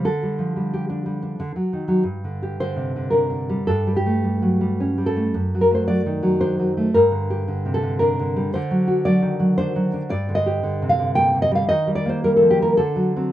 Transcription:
\new Staff \with { instrumentName = "Nylon-string guitar" } { \clef bass \time 3/4 \key g \minor \tempo 4 = 111 << { a'2~ a'8 r8 | r4 c''4 bes'4 | a'8 g'2 a'8~ | a'8 bes'16 c''16 d''4 c''4 |
bes'4. a'8 bes'4 | c''4 d''4 c''4 | d''8 ees''4 f''8 g''8 ees''16 f''16 | ees''8 d''16 c''16 bes'16 a'16 g'16 bes'16 a'4 | } \\ { d16 g16 f16 g16 g'16 d'16 g16 d'16 d16 fis16 ees16 fis16 | \tuplet 3/2 { g,8 d8 g'8 d8 c8 d8 d'8 d8 g8 } | \tuplet 3/2 { g,8 g8 a8 g8 fis8 g8 cis'8 g8 a8 } | \tuplet 3/2 { fis,8 fis8 a8 fis8 ees8 fis8 d'8 fis8 a8 } |
\tuplet 3/2 { g,8 d8 g'8 d8 c8 d8 d'8 d8 g8 } | \tuplet 3/2 { d8 fis8 fis'8 fis8 ees8 fis8 d'8 fis8 d'8 } | \tuplet 3/2 { g,8 d8 g'8 d8 c8 d8 bes8 d8 g8 } | \tuplet 3/2 { ees8 g8 bes8 g8 f8 g8 d8 fis8 <fis c'>8 } | } >> }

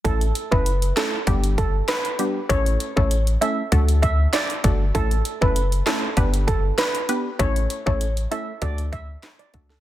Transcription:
<<
  \new Staff \with { instrumentName = "Steel pan" } { \time 4/4 \key a \mixolydian \tempo 4 = 98 a'8 r16 b'16 r8 a'16 r8. a'16 r16 b'8. r16 | cis''8 r16 cis''16 r8 e''16 r8. e''16 r16 d''8. r16 | a'8 r16 b'16 r8 a'16 r8. a'16 r16 b'8. r16 | cis''8 r16 cis''16 r8 e''16 r16 d''16 r16 e''16 r8 d''16 r16 a'16 | }
  \new Staff \with { instrumentName = "Synth stab" } { \time 4/4 \key a \mixolydian <a cis' e' a'>16 r8 <a cis' e' a'>16 r8 <a cis' e' a'>16 r16 <g b d' g'>4. <g b d' g'>16 r16 | <a cis' e' a'>8. <a cis' e' a'>16 r8 <a cis' e' a'>16 r16 <a d' fis' a'>4. <a d' fis' a'>16 r16 | <a cis' e' a'>16 r8 <a cis' e' a'>16 r8 <a cis' e' a'>16 r16 <b d' g' b'>4. <b d' g' b'>16 r16 | <a cis' e' a'>8. <a cis' e' a'>16 r8 <a cis' e' a'>16 r16 <a d' fis' a'>4. <a d' fis' a'>16 r16 | }
  \new Staff \with { instrumentName = "Analog synth bass" } { \clef bass \time 4/4 \key a \mixolydian a,,8 r16 fis,,8. r8 g,,4 r4 | a,,8 r16 a,,8. r8 d,4 r8 g,,8 | a,,8 r16 fis,,8. r8 g,,4 r4 | a,,8 r16 a,,8. r8 d,4 r8 cis,8 | }
  \new DrumStaff \with { instrumentName = "Drums" } \drummode { \time 4/4 <hh bd>16 hh16 hh16 bd16 hh16 hh16 <hc hh sn>8 <hh bd>16 hh16 <hh bd>8 <hc hh ss sn>16 hh16 hh8 | <hh bd>16 hh16 hh16 bd16 hh16 hh16 hh8 <hh bd>16 hh16 <hh bd>8 <hc hh ss sn>16 hh16 <hh bd>8 | <hh bd>16 hh16 hh16 bd16 hh16 hh16 <hc hh sn>8 <hh bd>16 hh16 <hh bd>8 <hc hh ss sn>16 hh16 hh8 | <hh bd>16 hh16 hh16 bd16 hh16 hh16 hh8 <hh bd>16 hh16 <hh bd>8 <hc hh ss sn>16 hh16 <hh bd>16 sn16 | }
>>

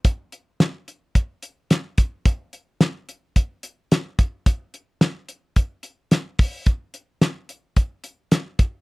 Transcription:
\new DrumStaff \with { instrumentName = "Drums" } \drummode { \time 4/4 \tempo 4 = 109 <hh bd>8 hh8 <hh sn>8 hh8 <hh bd>8 hh8 <hh sn>8 <hh bd>8 | <hh bd>8 hh8 <hh sn>8 hh8 <hh bd>8 hh8 <hh sn>8 <hh bd>8 | <hh bd>8 hh8 <hh sn>8 hh8 <hh bd>8 hh8 <hh sn>8 <hho bd>8 | <hh bd>8 hh8 <hh sn>8 hh8 <hh bd>8 hh8 <hh sn>8 <hh bd>8 | }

